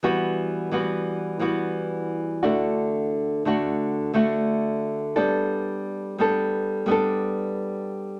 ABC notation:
X:1
M:4/4
L:1/8
Q:"Swing 16ths" 1/4=88
K:Edor
V:1 name="Nylon-string guitar"
[E,G,B,F]2 [E,G,B,F]2 [E,G,B,F]3 [D,A,DF]- | [D,A,DF]2 [D,A,DF]2 [D,A,DF]3 [G,B,DA]- | [G,B,DA]2 [G,B,DA]2 [G,B,DA]4 |]